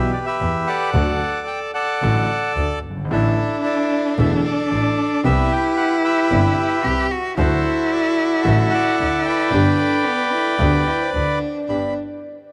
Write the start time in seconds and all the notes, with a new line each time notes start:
Already playing: G4 B4 E5
0.13 D5
0.26 G4 B4 E5
0.40 E2 E3
0.67 A4 D5 F#5
0.94 D2 D3 F#3 A3 F#4
1.47 G5
1.74 A4 D5 F#5
2.02 A1 A2 D3 F#3 A3 F#4
2.56 D2 D3
2.84 G1
2.90 F#1
2.97 G1
3.05 G#1
3.10 A1 A2 D3 E3 A3 D4 E4 A4
3.64 A4 D5
4.18 E1 E2 D3 E3 A3 E4 A4 E5
4.44 A4 D5
4.71 A1 A2
5.23 C2 C3 G3 B3 E4 G4 B4 E5
5.52 G5
5.77 F#5
6.04 G4 B4 E5
6.31 G1 G2 C3 G3 B3 E4
6.84 C2 C3 G4
7.11 F#4
7.37 D2 D3 F#3 A3 E4 F#4 A4 C5
7.92 F#4 A4 D5
8.43 A1 A2 D3 F#3 A3 F#4 A4 E5
8.71 A4 D5 F#5
8.99 D2 D3
9.25 B4 D5 G5
9.51 G1 G2 D3 G3 B3 D4 G4
9.80 A4
10.07 B3 B4
10.33 E4 A4
10.59 D2 D3 G3 B3 D4 G4 B4
10.87 E4
11.01 C5
11.13 D2 D3 D4 D5
11.67 G1 G2 B3 D4 G4 D5 B5